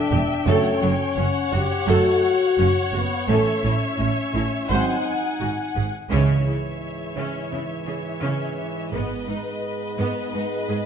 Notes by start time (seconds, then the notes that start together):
Already playing: D4 E5 G5
0.11 E1 E2 G4
0.46 F#1 F#2 F#3 A3 C#4 A4 C#5
0.82 F#1 F#2 F#3
1.17 F#1 F#2 C#4 F#5
1.52 F#1 F#2 F#4 G4
1.87 F#1 F#2 F#3 A3 F#4 A4
2.58 F#1 F#2 C#4
2.92 F#1 F#2 B3 F#4
3.28 A1 A2 E3 A3 C#4 A4 E5
3.63 A1 A2 E4
3.99 A1 A2 C#4
4.34 A1 A2 E4
4.70 G#1 G#2 F#3 C4 D#4 C5 F#5 G#5
5.39 G#1 G#2 F#4
5.75 G#1 G#2 G#4
6.10 C#2 G#2 C#3 E3 G#3 C#4 E4 C#5 E5
6.46 C#3 E4
7.16 C#3 C#4
7.52 C#3 E4
7.86 C#3 G#4
8.22 C#3 C#4
8.92 G#1 G#2 G#3 B3 D#4 B4 D#5
9.27 G#2 D#4
9.98 G#2 B3
10.34 G#2 D#4
10.69 G#2 G#4